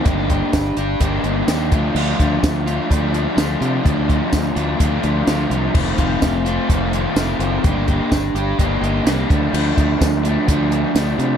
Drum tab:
CC |--------|x-------|--------|x-------|
HH |xxxxxxxx|-xxxxxxx|xxxxxxxx|-xxxxxxx|
TB |--x---x-|--x---x-|--x---x-|--x---x-|
SD |--o---o-|--o---o-|--o---o-|--o---o-|
BD |ooo-o--o|-oo-o---|ooo-o---|ooo-o---|

CC |--------|x-------|
HH |xxxxxxxx|-xxxxxxx|
TB |--x---x-|--x---x-|
SD |--o---o-|--o---o-|
BD |ooo-o--o|-oo-o---|